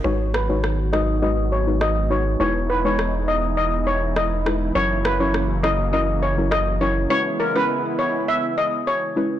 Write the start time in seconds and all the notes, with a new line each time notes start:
0.04 G#1 D#3 F#3 G#3 B3 D#4 F#4 B4 C#5
0.34 B4, cross-stick
0.49 G#3 D#4 F#4 B4 C#5
0.64 cross-stick
0.93 G#3 D#4 F#4 B4 D#5, cross-stick
1.22 G#3 D#4 F#4 B4 D#5
1.52 C#5
1.67 G#3 D#4 F#4 B4
1.81 D#5, cross-stick
2.10 G#3 D#4 F#4 B4 C#5
2.40 E1 E3 G#3 D#4 E4 B4 C#5
2.70 B4
2.85 G#3 D#4 E4 B4 C#5
2.99 cross-stick
3.28 D#5
3.57 D#5
3.87 C#5
4.16 D#5, cross-stick
4.46 G#3 D#4 E4 B4, cross-stick
4.75 F#1 C#3 F#3 A#3 C#4 E4 A#4 C#5
5.05 B4, cross-stick
5.20 F#3 C#4 E4 A#4 C#5
5.34 cross-stick
5.63 F#3 C#4 E4 A#4 D#5, cross-stick
5.93 F#3 C#4 E4 A#4 D#5
6.23 C#5
6.37 F#3 C#4 E4 A#4
6.51 D#5, cross-stick
6.81 F#3 C#4 E4 A#4 C#5
7.10 G#3 B3 C#4 E4 B4 C#5
7.40 A#4
7.55 G#3 C#4 E4 B4
7.99 C#5
8.28 E5
8.58 D#5
8.87 C#5
9.16 G#3 C#4 E4 B4